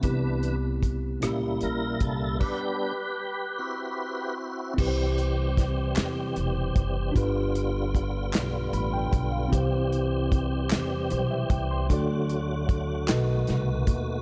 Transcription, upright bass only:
\new Staff \with { instrumentName = "Upright bass" } { \clef bass \time 6/8 \key c \lydian \tempo 4. = 51 c,4. cis,8 ais,,8 c,8 | r2. | c,4. e,8 e,,8 fis,,8 | g,,4. b,,8 a,,8 b,,8 |
c,4. e,8 b,,8 c,8 | d,4. b,,8 c,8 dis,8 | }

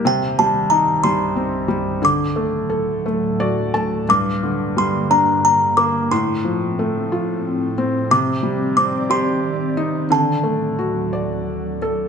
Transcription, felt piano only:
\new Staff \with { instrumentName = "Felt piano" } { \time 6/8 \key g \minor \tempo 4. = 59 c8 g8 ees'8 g8 c'8 g8 | d8 a8 a'8 a8 <fis' d''>8 <a a''>8 | g,8 d8 g8 d'4 bes8 | a,8 f8 a8 f'4 c'8 |
c8 g8 c'8 g'4 ees'8 | d8 a8 fis'8 d''4 a'8 | }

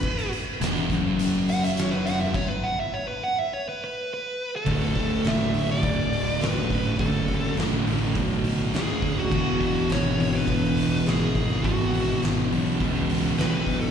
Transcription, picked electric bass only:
\new Staff \with { instrumentName = "Picked electric bass" } { \clef bass \time 4/4 \key d \lydian \tempo 4 = 103 r4 e,,8 fis,,2~ fis,,8 | r1 | d,,4 fis,,4 d,,4 fis,,4 | fis,,4 fis,,8 a,,8 b,,4 d,4 |
e,,4 gis,,4 e,,4 gis,,4 | gis,,4 gis,,8 b,,8 cis,4 b,,4 | }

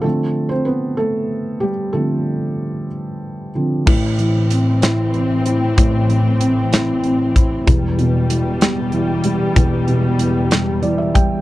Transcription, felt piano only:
<<
  \new Staff \with { instrumentName = "Felt piano" } { \time 6/8 \key a \minor \tempo 4. = 63 <a a'>8. <c' c''>16 <b b'>8 <a a'>4 <g g'>8 | <a a'>2~ <a a'>8 r8 | r2. | r2. |
r2. | r2 d''16 e''16 g''8 | }
  \new Staff \with { instrumentName = "Felt piano" } { \clef bass \time 6/8 \key a \minor <d f c'>2. | <d f c'>4. r4 <d f c'>8 | <a,, a,>8 e8 c'8 e'8 c'8 e'8 | <a,, a,>8 e8 c'8 e'8 c'8 e'8 |
<e,, e,>8 b,8 e8 g8 e8 g8 | <e,, e,>8 b,8 e8 g8 e8 g8 | }
>>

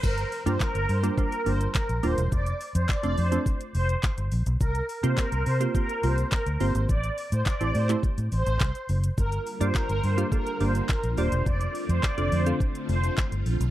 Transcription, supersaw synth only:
\new Staff \with { instrumentName = "Supersaw synth" } { \time 4/4 \key g \dorian \tempo 4 = 105 bes'16 r8 c''16 bes'8 c''16 r16 bes'8 c''16 r16 bes'16 r16 c''16 r16 | d''16 r8 c''16 d''8 c''16 r8. c''16 r4 r16 | bes'16 r8 c''16 bes'8 c''16 r16 bes'8 c''16 r16 bes'16 r16 c''16 r16 | d''16 r8 c''16 d''8 c''16 r8. c''8. r8. |
bes'16 r8 c''16 bes'8 c''16 r16 bes'8 c''16 r16 bes'16 r16 c''16 r16 | d''16 r8 c''16 d''8 c''16 r8. c''16 r4 r16 | }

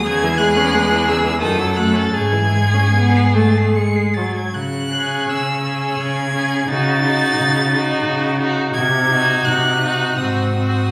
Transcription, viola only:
\new Staff \with { instrumentName = "Viola" } { \time 3/4 \key cis \minor \tempo 4 = 85 cis16 e16 gis16 cis'16 gis16 e16 cis16 e16 dis16 fis16 a16 cis'16 | cis16 e16 gis16 cis'16 b8 a8 gis8 fis8 | r8 cis'4 cis'4 cis'8 | dis'8 dis'4 dis'4 dis'8 |
r8 dis'4 dis'8 bis8 bis8 | }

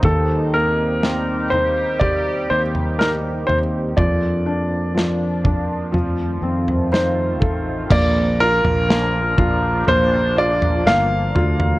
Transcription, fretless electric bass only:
\new Staff \with { instrumentName = "Fretless electric bass" } { \clef bass \time 4/4 \key bes \major \tempo 4 = 61 ees,2~ ees,8 ees,4 ees,8 | f,2 f,8 f,4 a,,8 | bes,,8. bes,,8. bes,,8 bes,,4 g,,8 d,8 | }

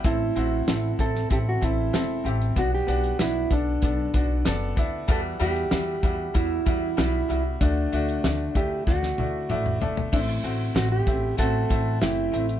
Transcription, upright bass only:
\new Staff \with { instrumentName = "Upright bass" } { \clef bass \time 4/4 \key a \dorian \tempo 4 = 95 a,,8 a,,8 a,,8 a,,8 a,,8 a,,8 e,,8 a,,8 | b,,8 b,,8 b,,8 b,,8 b,,8 b,,8 fis,,8 d,8 | e,8 e,8 e,8 e,8 e,8 e,8 b,,8 c,8 | d,8 d,8 d,8 d,8 d,8 d,8 a,,8 g,,8 |
a,,8 a,,8 a,,8 a,,8 a,,8 a,,8 fis,,8 a,,8 | }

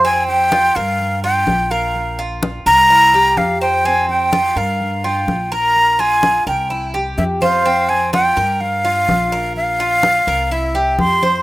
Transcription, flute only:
\new Staff \with { instrumentName = "Flute" } { \time 4/4 \key f \minor \tempo 4 = 126 aes''8 g''4 f''4 g''4 f''8~ | f''8 r4 bes''4. f''8 g''8 | aes''8 g''4 f''4 g''4 bes''8~ | bes''8 aes''4 g''4 r8 e''8 f''8~ |
f''8 aes''8 g''4 f''2 | f''2 e''4 c'''4 | }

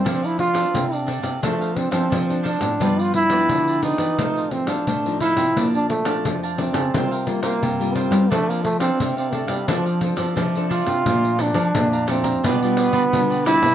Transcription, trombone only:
\new Staff \with { instrumentName = "Trombone" } { \time 4/4 \key f \major \tempo 4 = 87 c'16 e'16 f'8. d'16 r8 a8 c'16 c'8. d'8~ | d'16 f'16 e'4 ees'4 c'16 d'8. e'8~ | e'16 d'16 a8 r8 c'4 bes16 bes8. c'8 | a16 bes16 a16 c'8 c'16 a16 g16 f4 r8 f'8~ |
\key bes \major f'8 d'4 c'8 b4. e'8 | }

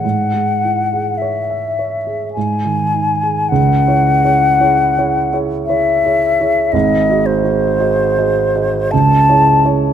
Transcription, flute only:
\new Staff \with { instrumentName = "Flute" } { \time 3/4 \key cis \minor \tempo 4 = 55 fis''4 e''4 gis''4 | fis''2 e''4 | dis''8 bis'4. a''8 r8 | }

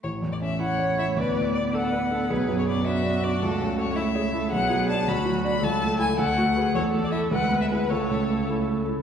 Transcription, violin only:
\new Staff \with { instrumentName = "Violin" } { \time 6/8 \key a \major \tempo 4. = 107 cis''8. d''16 e''8 fis''4 e''8 | b'4 d''8 fis''4. | b'8. cis''16 d''8 e''4 d''8 | a'4 cis''8 e''4. |
fis''4 a''8 b''4 b''8 | a''4 gis''8 fis''4. | cis''8. d''16 e''8 fis''8. e''16 b'8 | cis''4. r4. | }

